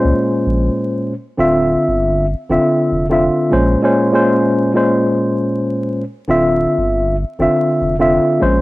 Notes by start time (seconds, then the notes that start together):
Already playing: A#2 G#3 C#4 C5
0.04 C#2
0.46 A#1
1.38 D1 D3 C4 F4 E5
1.88 G1
2.49 F1 D3 C4 F4 E5
2.91 F1
3.09 D3 C4 F4 E5
3.50 A#1 A#2 G#3 C#4 C5
3.82 A#2 G#3 C#4 C5
4.12 A#2 G#3 C#4 C5
4.74 A#2 G#3 C#4 C5
6.28 D1 D3 C4 F4 E5
6.77 G1
7.39 F1 D3 C4 F4 E5
7.81 F1
7.99 D3 C4 F4 E5
8.40 A#1 A#2 G#3 C#4 C5